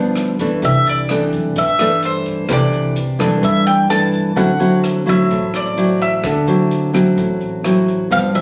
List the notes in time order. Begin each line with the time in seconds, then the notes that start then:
Already playing: D2 G2 F3 B3 D4
0.16 cross-stick, closed hi-hat
0.39 G1 E3 A3 D4, kick, closed hi-hat
0.62 C2 C3 E5, kick, closed hi-hat
0.85 C2 D5, closed hi-hat
1.09 E3 A3 D4, cross-stick, closed hi-hat
1.32 G2, kick, closed hi-hat
1.56 G2 E5, kick, closed hi-hat
1.79 E3 A3 D4, cross-stick, closed hi-hat
2.03 C5, closed hi-hat
2.26 kick, closed hi-hat
2.49 C2 C3 E3 A3 D4 D5, kick, cross-stick, closed hi-hat
2.73 C2, closed hi-hat
2.96 closed hi-hat
3.19 G2 E3 A3 D4, kick, cross-stick, closed hi-hat
3.42 G2 E5, kick, closed hi-hat
3.67 G5, closed hi-hat
3.89 E3 A3 D4 A5, cross-stick, closed hi-hat
4.13 kick, closed hi-hat
4.36 D2 D3 F#3 C4 E4 F#5, kick, closed hi-hat
4.60 D2 F#3 C4 E4, closed hi-hat
4.84 cross-stick, closed hi-hat
5.06 A1 F#3 C4 E4 E5, kick, closed hi-hat
5.30 A1 A2, kick, closed hi-hat
5.54 D5, cross-stick, closed hi-hat
5.77 F#3 C4 E4, closed hi-hat
6.01 E5, kick, closed hi-hat
6.24 D2 D3, kick, cross-stick, closed hi-hat
6.47 D2 F#3 C4 E4, closed hi-hat
6.71 closed hi-hat
6.93 A1 F#3 C4 E4, kick, cross-stick, closed hi-hat
7.17 A1 A2, kick, closed hi-hat
7.41 closed hi-hat
7.64 F#3 C4 E4, cross-stick, closed hi-hat
7.88 kick, closed hi-hat
8.11 G1 G2 F3 C4 D4 F5, kick, closed hi-hat
8.34 G1 F3 C4 D4 E5, closed hi-hat